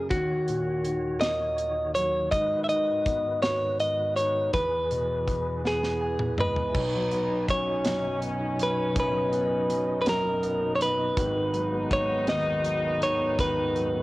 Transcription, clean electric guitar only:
0.11 F#4
1.21 D#5
1.95 C#5
2.31 D#5
2.64 E5
2.69 D#5
3.42 C#5
3.80 D#5
4.16 C#5
4.53 B4
5.67 G#4
6.41 B4
7.51 C#5
8.63 B4
9.00 B4
10.01 B4
10.09 A#4
10.75 C#5
10.82 B4
11.93 C#5
12.29 D#5
13.03 C#5
13.40 B4

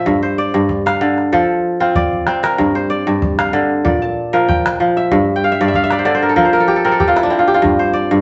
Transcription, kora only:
Already playing: A#2 F3 A#4 E5 G5
0.06 G2
0.23 C5
0.38 D5
0.54 G2
0.86 F5
1.01 D3
1.32 F3 A4
1.80 C4 F4
1.96 D5
2.27 C4
2.43 A#4
2.58 G2
2.75 C5
2.90 D5
3.07 G2
3.39 F5
3.53 D3
3.85 A#2 D5
4.02 A5
4.33 F3 A#4
4.48 G5
4.80 F3
4.97 E5
5.12 G2
5.36 G5
5.44 F5
5.52 E5
5.61 G2 D5
5.68 E5
5.75 F5
5.84 E5
5.92 D5
5.99 C5
6.05 D3 D5
6.15 C5
6.22 A#4
6.29 A4
6.36 F3 A#4
6.45 C5
6.53 A#4
6.60 A4
6.68 G4
6.76 A4
6.85 C4 A#4
6.92 A4
7.00 G4
7.08 F4
7.16 E4
7.23 D4
7.30 C4 E4
7.39 F4
7.48 G4
7.54 F4
7.62 G2
7.79 C5
7.93 D5
8.11 G2

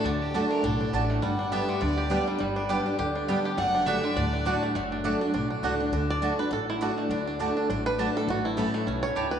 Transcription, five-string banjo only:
Already playing: A3 D4
0.05 D4
0.34 D4
0.51 D4
0.64 D4
0.80 D4
0.94 D4
1.10 A3
1.22 G3
1.39 D4
1.52 B3
1.69 D3
1.82 D4
1.98 G4
2.11 D4
2.28 G3
2.40 G3
2.56 D4
2.69 G4
2.86 D4
2.99 G4
3.15 D4
3.28 B3
3.45 G4
3.58 A3
3.75 D4
3.87 D4
4.04 D3
4.17 D4
4.33 D4
4.46 D4
4.63 A3
4.75 A3
4.92 D4
5.05 D4
5.21 D4
5.34 D4
5.50 D4
5.64 D4
5.80 D4
5.93 D4
6.10 D5
6.23 D4
6.39 B4
6.53 A4
6.70 E4
6.82 F#4
6.98 A3
7.11 D4
7.27 D4
7.40 D4
7.57 D4
7.70 D4
7.86 B4
7.99 D4
8.17 A4
8.30 F#4
8.45 E4
8.58 A4
8.74 A3
8.87 C#4
9.03 C#5
9.16 G4
9.31 B4

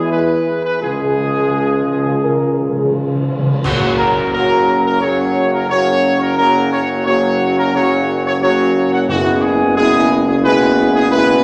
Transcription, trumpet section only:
0.11 B4
0.64 B4
0.82 G#4
3.64 F#4
3.97 A#4
4.32 A#4
4.84 A#4
5.01 C#5
5.52 A#4
5.68 C#5
6.20 A#4
6.37 A#4
6.71 C#5
7.06 C#5
7.58 A#4
7.74 C#5
8.25 C#5
8.42 C#5
8.92 F#5
9.08 F#4
9.42 G#4
9.76 G#4
10.27 G#4
10.44 B4
10.94 G#4
11.11 B4

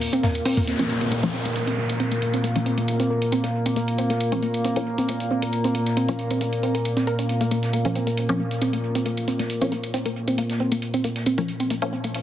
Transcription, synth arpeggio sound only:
0.13 C4
0.23 A#3
0.45 C4
0.57 A#3
0.67 C4
0.79 A#3
1.01 C4
1.12 A#3
1.34 C4
1.45 A#3
1.67 C4
1.78 A#3
2.00 C4
2.11 A#3
2.34 C4
2.44 A#3
2.66 C4
2.78 A#3
3.00 C4
3.10 A#3
3.32 C4
3.44 A#3
3.66 C4
3.76 A#3
3.98 C4
4.10 A#3
4.32 C4
4.43 A#3
4.65 C4
4.76 A#3
4.98 C4
5.09 A#3
5.31 C4
5.42 A#3
5.64 C4
5.75 A#3
5.97 C4
6.09 A#3
6.31 C4
6.41 A#3
6.63 C4
6.75 A#3
6.97 C4
7.07 A#4
7.19 C#4
7.41 A#3
7.51 A#3
7.73 A#3
7.95 C4
8.07 A#3
8.29 C4
8.40 A#3
8.62 C4
8.73 A#3
8.95 C4
9.06 A#3
9.28 C4
9.39 A#3
9.61 C4
9.72 A#3
9.94 C4
10.06 A#3
10.28 C4
10.38 A#3
10.60 C4
10.72 A#3
10.94 C4
11.04 A#3
11.26 C4
11.38 A#3
11.60 C4
11.70 A#3
11.93 C4
12.04 A#3

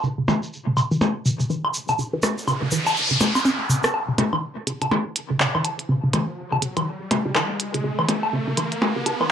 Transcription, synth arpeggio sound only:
0.04 C#3
0.18 C#3
0.28 E3
0.67 C#3
0.77 C#3
0.91 E3
1.26 C#3
1.40 C#3
1.50 E3
1.89 C#3
1.99 C#3
2.13 E3
2.48 C#3
2.62 C#3
2.72 E3
3.11 C#3
3.35 C#4
3.45 C#4
3.70 C#3
4.08 C#3
4.18 C#3
4.33 E3
4.67 C#3
4.82 C#3
4.91 E3
5.30 C#3
5.40 C#3
5.55 E3
5.89 C#3
6.04 C#3
6.13 E3
6.52 C#3
6.62 C#3
6.77 E3
7.11 C#3
7.26 C#3
7.35 E3
7.74 C#3
7.84 C#3
7.99 E3
8.33 C#3
8.48 C#3
8.57 E3
8.96 C#3
9.06 C#3
9.21 E3

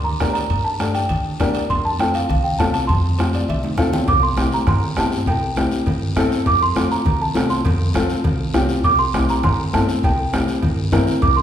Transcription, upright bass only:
Already playing: D2
0.20 D2
0.50 G2
1.10 D2
1.40 D2
1.70 F2
2.29 C2
2.60 C2
2.89 F2
3.49 C2
3.78 C2
4.08 C2
4.37 C2
4.67 G2
4.97 G2
5.26 C2
5.56 C2
5.86 G2
6.16 G2
6.46 F2
6.76 F2
7.06 C2
7.35 C2
7.66 F2
7.95 F2
8.25 C2
8.55 C2
8.84 C2
9.14 C2
9.44 G2
9.74 G2
10.03 C2
10.33 C2
10.63 G2
10.92 G2
11.22 C2

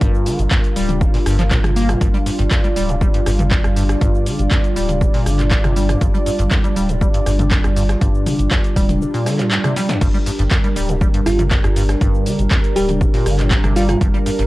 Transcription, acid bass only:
0.01 G2
0.26 D3
0.39 A2
0.51 F2
0.76 G3
1.01 G2
1.14 A#2
1.26 G2
1.39 F3
1.51 A#2
1.64 G1
1.76 A#3
1.89 G2
2.01 G2
2.14 G3
2.26 G2
2.39 G2
2.51 F2
2.64 G3
2.76 G3
2.89 G2
3.01 G3
3.14 G2
3.26 G2
3.39 G2
3.51 F2
3.64 F2
3.76 G2
4.01 G2
4.26 D3
4.39 A2
4.51 F2
4.76 G3
5.01 G2
5.14 A#2
5.26 D3
5.39 A2
5.51 G2
5.64 C3
5.76 G3
5.89 F2
6.01 G2
6.14 G3
6.26 G2
6.39 G2
6.51 F2
6.64 G3
6.76 G3
6.89 G2
7.01 G3
7.14 G2
7.26 G2
7.39 G2
7.51 F2
7.64 F2
7.76 G2
8.01 G2
8.26 D3
8.39 A2
8.51 F2
8.76 G3
9.01 G2
9.14 A#2
9.26 D3
9.39 A2
9.51 G2
9.64 C3
9.76 G3
9.89 F2
10.14 G3
10.26 G2
10.39 G2
10.51 F2
10.64 G3
10.76 G3
10.89 G2
11.01 G3
11.14 G2
11.26 G2
11.39 G2
11.51 F2
11.64 F2
11.76 G2
12.01 G2
12.26 D3
12.39 A2
12.51 F2
12.76 G3
13.01 G2
13.14 A#2
13.26 D3
13.39 A2
13.51 G2
13.64 C3
13.76 G3
13.89 F2
14.01 G2
14.14 G3
14.26 G2
14.39 G2

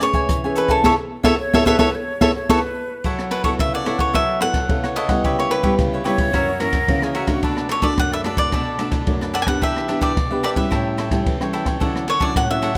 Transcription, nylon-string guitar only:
Already playing: A3
0.01 C#4 G#4 B4
0.30 E3
0.44 C#4 G#4 B4
0.85 E4 G#4 A4
1.25 E4 G#4 A4
1.54 E4 G#4 A4
1.67 E4 G#4 A4
1.79 E4 G#4 A4
2.21 E4 G#4 A4
2.50 E4 G#4 A4
3.05 F#3
3.44 B3 E4 A4
3.60 C#3
3.87 B3 E4 A4
4.15 F#3
4.42 B3 E4 A4
4.69 C#3 B3 E4 A4
5.09 G3 B3 E4
5.25 C#3
5.63 G3 B3 E4
5.79 C#3
6.06 G3 B3 E4
6.34 F#2 E3 A#3 C#4
6.60 E3 A#3 C#4
6.88 C#3 E3 A#3 C#4
7.28 A3 D4 F#4
7.43 B2
7.82 A3 D4 F#4
7.98 F#2
8.25 A3 D4 F#4
8.52 B2
8.79 A3 D4 F#4
9.07 F#2 A3 D4 F#4
9.47 B3 D4 G4
9.62 E3
9.89 B3 D4 G4
10.16 B2
10.31 B3 D4 G4
10.56 G3 C#4 E4
10.72 A2
11.11 G3 C#4 E4
11.26 E3
11.40 G3 C#4 E4
11.81 D3 F#3 C#4 E4
12.21 F#3 C#4 E4
12.36 A2
12.50 F#3 C#4 E4

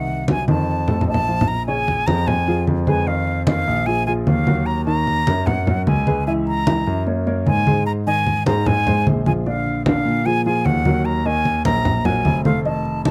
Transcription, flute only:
Already playing: F#5
0.30 G#5
0.49 A5
1.08 A5
1.48 A#5
1.67 G#5
2.07 A#5
2.27 G#5
2.87 G#5
3.07 F5
3.47 F5
3.86 G#5
4.06 G#5
4.26 F5
4.66 A#5
4.85 A#5
5.46 F#5
5.87 G#5
6.27 G#5
6.47 A#5
7.47 G#5
7.86 A#5
8.07 G#5
8.47 A#5
8.67 G#5
9.26 G#5
9.46 F5
9.86 F5
10.26 G#5
10.46 G#5
10.65 F#5
11.05 A#5
11.26 G#5
11.65 A#5
12.05 G#5
12.45 F5
12.65 A5
13.05 A5

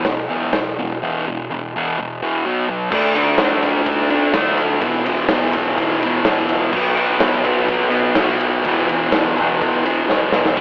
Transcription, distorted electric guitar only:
0.06 E2 B2
0.29 E2 B2 E3
0.54 E2 B2
0.79 E2 B2
1.02 E2 B2 E3
1.28 E2 B2
1.51 E2 B2
1.76 E2 B2 E3
1.99 E2 B2
2.22 E2 B2 E3
2.46 B2 F#3 B3
2.69 B2 F#3
2.91 D3 A3 D4
3.15 A3 D4
3.40 D3 A3 D4
3.63 A3 D4
4.10 D4
4.14 A3
4.34 D3 A3 D4
4.81 E2 B2 E3
5.06 B2 E3
5.30 E2 B2 E3
5.53 E3
5.57 B2
6.02 B2 E3
6.26 E2 B2 E3
6.72 B2 F#3 B3
6.97 F#3 B3
7.20 B2 F#3 B3
7.44 F#3 B3
7.90 F#3 B3
8.16 B2 F#3 B3
8.64 E2 B2 E3
8.89 B2 E3
9.12 E2 B2 E3
9.36 E3
9.41 B2
9.85 B2 E3
10.09 E2 B2
10.13 E3
10.58 D3

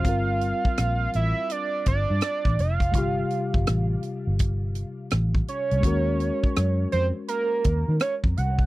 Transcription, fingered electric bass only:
0.06 G1
0.66 muted fingered electric bass stroke
0.79 A#1
1.15 A1
1.88 G1
2.10 G2
2.46 A1
2.59 F1
2.94 G1
3.55 G1
3.68 A1
4.27 G1
5.12 A1
5.72 C2
5.84 D#2
6.45 muted fingered electric bass stroke
6.57 F#2
6.93 F2
7.66 D#2
7.88 D#3
8.24 F2
8.38 C2

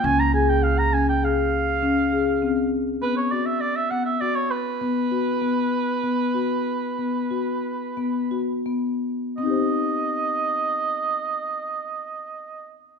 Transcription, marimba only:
0.04 C#4
0.34 G#4
0.93 C#4
1.23 G#4
1.83 C#4
2.12 G#4
2.42 C4
3.02 B3
3.32 F#4
3.91 B3
4.22 F#4
4.81 B3
5.11 F#4
5.41 B3
6.03 B3
6.34 F#4
6.99 B3
7.31 F#4
7.97 B3
8.31 F#4
8.66 B3
9.38 C4
9.42 D#4 G4
9.50 C5

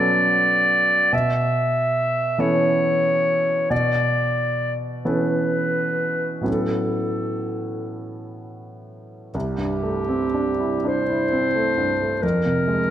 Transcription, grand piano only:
Already playing: B2 F#3 B3 C#4 A4
1.13 B2
2.38 E3 B3 C#4 A4
3.70 B2
5.05 E3 B3 C#4 A4
6.41 A2 F#3 B3 C#4
6.45 A4
9.34 C2
9.58 G2
9.83 A3
10.09 C4
10.34 D4
10.60 E4
10.85 D4
11.10 E4
11.32 C4
11.55 A3
11.78 G2
12.01 A3
12.23 F2
12.46 C3
12.68 G#3

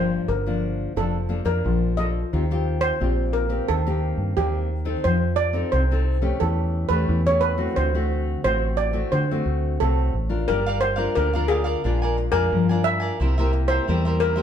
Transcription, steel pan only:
Already playing: C5
0.28 A#4
0.97 A4
1.46 A#4
1.97 D#5
2.81 C5
3.33 A#4
3.68 A4
4.37 G4
5.04 C5
5.36 D5
5.72 C5
6.40 A4
6.89 B4
7.27 C#5
7.41 B4
7.76 C5
8.44 C5
8.77 D5
9.12 C5
9.80 A4
10.48 A#4
10.81 C5
11.15 A#4
11.48 G#4
12.32 A#4
12.84 E5
13.68 C5
14.20 A#4

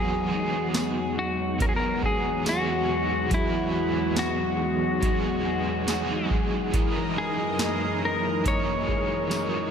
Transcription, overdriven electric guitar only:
Already playing: E3 F#3 B3 D#4 G#4
0.29 B3 D#4 G#4
1.59 F#3 B3 D#4 G#4
2.43 F#3 B3 D#4 G#4
3.28 E3 F#3 B3
3.34 G#4
5.01 F#3 B3 D#4 G#4
5.87 F#3 B3 D#4 G#4
6.71 F#3 D#4 E4
6.76 A#4
8.44 F#3 D#4 E4 A#4
9.30 F#3 D#4 E4 A#4

